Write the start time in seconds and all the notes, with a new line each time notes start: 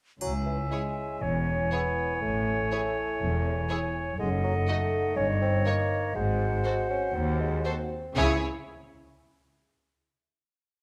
0.20 C#2 F#3 E4 C#5 E5 G#5, triangle
0.46 E3
0.71 G#3 E4 G#4 C#5
1.22 E1 E2 C#4 C#5
1.72 B3 E4 G#4 C#5
2.16 B3
2.21 A1 A2 A3
2.71 E4 G#4 C#5
3.20 E1 E2
3.69 E4 G#4 C#5
4.18 F#1 F#2 G#3 D#4 A4 D#5 F#5
4.44 F#3
4.67 A3 D#4 F#4 D#5
5.16 G1 G2 C#4 C#5 D#5
5.42 C4
5.66 A#3 D#4 A#4 C#5
6.15 G#1 G#2 G#3 F#4 C5 F#5
6.64 F#4 A4 C5
6.90 C#4
7.15 D#2 C4
7.41 G#3
7.65 C4 F#4 A4 C5
8.16 C#2 C#3 C#4 E4 G#4 C#5 G#5